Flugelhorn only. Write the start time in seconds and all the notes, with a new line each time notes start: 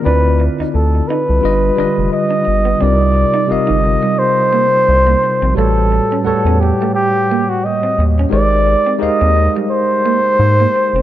0.05 B4
0.74 A4
1.08 B4
2.13 D#5
2.82 D5
3.51 D#5
4.19 C5
5.57 A4
6.26 A4
6.60 G4
6.95 G4
7.50 F#4
7.65 D#5
8.33 D5
9.02 D#5
9.71 C5